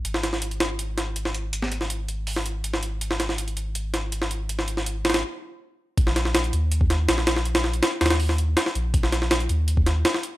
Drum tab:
HH |x---x---x-x-x---x---x---x---x---|x---x---x---x---o---x---x---x---|x---x---x-x-x---x---x---x---x---|x---x---x---xxx-----------------|
SD |--o-o-o-----o-------o-----o-----|--o---o-----------o-------o-----|--o-o-o-------------o-----o-----|--o---o-----ooo-----------------|
BD |--------------------------------|--------------------------------|--------------------------------|--------------------------------|

HH |x---x---x-x-x---x---x---x---x---|x-x---x-x---xxx-o---x---x---x---|x---x---x-x-x---x---x---x---x---|
SD |--o-o-o-o-----------o---o-o-o-o-|--o-o---o---ooo---o-----o-o-----|--o-o-o-o-----------o---o-o-----|
BD |o-----------------o-------------|--------------------------------|o-----------------o-------------|